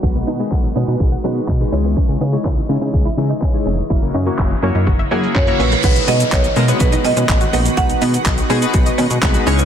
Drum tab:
CC |----------------|----------------|----------------|x---------------|
HH |xx-xxx-xxx-xxx-x|xxoxxxoxxxoxxxox|xxoxxxoxxxoxxxox|xxoxxxoxxxoxxxox|
SH |----------------|xxxx--xxxxxx--xx|xxxxxxxxxxxxxxxx|xxxxxxxxxxxxxxxx|
CP |----x-------x---|----x-------x---|----x-------x---|----x-------x---|
BD |o---o---o---o---|o---o---o---o---|o---o---o---o---|o---o---o---o---|

CC |----------------|
HH |xxoxxxoxxxoxxxox|
SH |xxxxxxxxxxxxxxxx|
CP |----x-------x---|
BD |o---o---o---o---|